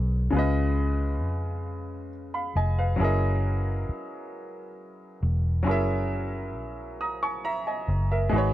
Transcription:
Already playing: B1 G#3 D#4 F#4 A#4 B4 C#5
0.30 C#2 C#3 G#3
0.34 F4 B4
0.39 D#5
1.22 F2
2.34 F5 B5
2.55 F1 D#5 G#5
2.78 B4 F5
2.96 F#3 C#4 E4
3.00 F#1 G#4 A#4
3.04 D#5
3.89 muted fingered electric bass stroke
5.23 E1
5.63 F#3 C#4 E4
5.67 F#1 G#4 A#4
5.71 E5
6.56 A#1
7.01 A#5 D#6
7.23 G#5 C#6
7.45 E5 A#5
7.67 D#5 G#5
7.88 F#1
8.12 A#4 E5
8.29 G#1 G#3 D#4 F#4
8.34 G#4 B4 C#5

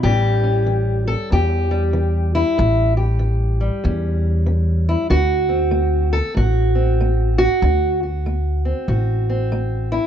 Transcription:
0.03 A1 A2 E3 G3 C#4 G4
0.44 C#4
0.66 E3
1.07 A4
1.30 E2 G4
1.71 G3
1.93 E3
2.35 E4
2.58 A1 A2
2.97 G4
3.19 E3
3.60 G3
3.84 E2 C#4
4.46 E3
4.89 E4
5.10 D2 D3 F#4
5.49 C4
5.71 A3
6.13 A4
6.34 A1 A2 F#4
6.75 C4
7.01 A3
7.38 F#4
7.62 D2 D3
8.03 F#4
8.26 A3
8.65 C4
8.88 A1 A2 F#4
9.30 C4
9.52 A3
9.92 E4

